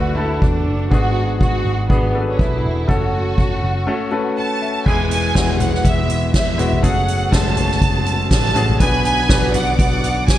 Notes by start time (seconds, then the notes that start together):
Already playing: D2 D3 A3 D4 F#4 A4 B4
0.16 A3 D4 E4 F#4 A4
0.42 E2 D4, kick
0.66 F#1
0.91 G#1 G#2 B3 D4 F#4 G#4, kick
1.41 F#4, kick
1.65 G#1
1.89 G#1 B3 D4 F#4 G#4, kick
2.14 B3 D4 F#4 A4
2.21 B4
2.30 C#4
2.39 B1 E4, kick
2.64 E1
2.88 F#1 A3 C#4 F#4 A4, kick
3.38 kick
3.63 F#1
3.87 A3 C#4 F#4 A4
4.11 A3 C#4 F#4 B4 A5
4.37 F#5 A5
4.62 E5
4.85 E1 B2 E3 G#3 B3 E4 G#4 G#5, kick, crash
5.11 G#5, closed hi-hat
5.35 E1 G#3 B3 E4 F#4, kick, snare, closed hi-hat
5.60 F#5, closed hi-hat, floor tom
5.74 snare
5.84 E1 E5, kick, closed hi-hat
6.09 closed hi-hat
6.34 E5, kick, snare, closed hi-hat
6.58 E1 G#3 B3 E4 F#4, closed hi-hat
6.73 floor tom
6.83 F#1 C#3 F#3 A3 C#4 F#4 G#4 F#5, kick, closed hi-hat
7.08 closed hi-hat
7.32 F#1 G#3 A3 C#4 F#4 A5, kick, snare, closed hi-hat
7.57 closed hi-hat, floor tom
7.71 snare
7.82 F#1, kick, closed hi-hat
8.06 closed hi-hat
8.31 A1 A5, kick, snare, closed hi-hat
8.54 A1 A3 C#4 F#4 G#4, closed hi-hat
8.69 floor tom
8.80 B1 B2 D3 F#3 B3 D4 F#4 B4 G#5 B5, kick, closed hi-hat
9.05 G#5, closed hi-hat
9.29 B1 B3 D4 F#4 B4, kick, snare, closed hi-hat
9.54 D5 F#5 D6, closed hi-hat, floor tom
9.79 B1 F#5, kick, closed hi-hat
10.04 closed hi-hat
10.28 G#5, kick, snare, closed hi-hat